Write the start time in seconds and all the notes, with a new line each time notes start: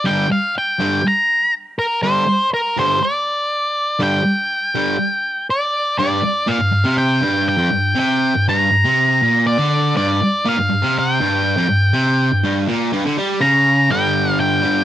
0.04 G2 D3 G3 G5
0.32 F5
0.58 G5
0.79 G2 D3 G3
1.08 A#5
1.79 A#4
2.03 G2 D3 G3 C5
2.54 A#4
2.77 G2 D3 G3 C5
3.03 D5
3.99 G2 D3 G3 G5
4.75 G2 D3 G3
5.50 D5
5.99 G2 D5
6.23 muted distorted electric guitar stroke
6.47 A#2 F5
6.58 G2
6.71 G2
6.84 C3
6.98 G5
7.21 G2
7.49 G5
7.57 F2
7.72 G2
7.95 C3
7.99 G5
8.35 G2
8.48 G2 A#5
8.71 G2
8.84 C3
9.22 A#2
9.47 D5
9.59 D3
9.95 G2 D5
10.22 muted distorted electric guitar stroke
10.45 A#2 F5
10.57 G2
10.70 G2
10.82 C3
10.99 G5
11.20 G2
11.57 F2
11.70 G2
11.94 C3
12.32 G2
12.44 G2
12.67 A#2
12.93 G2
13.05 D3
13.18 G3
13.41 C#3 A#5
13.89 G2 D3 G3 G5
14.40 G5
14.62 G2 D3 G3